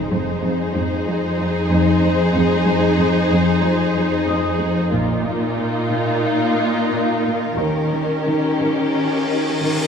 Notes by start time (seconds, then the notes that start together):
Already playing: F1 F2 D#4 G#4 C5 D#6
0.10 F2
0.43 F2
0.75 F2
1.07 F3
1.39 F3
1.71 F2
2.03 F2
2.35 F2
2.67 F2
2.99 F2
3.31 F2
3.63 F3
3.96 F3
4.28 F2 D#5 D#6
4.61 F2
4.92 A#1 A#2 D#4 F4 A#4
5.26 A#2
5.58 A#2
5.90 A#2
6.23 A#3
6.56 A#3 F#6
6.91 A#2
7.25 A#2
7.58 D#2 D#3 C#4 G4, cymbal swell
7.93 D#3
8.27 D#3
8.60 D#3
8.94 D#4
9.28 D#4
9.61 D#3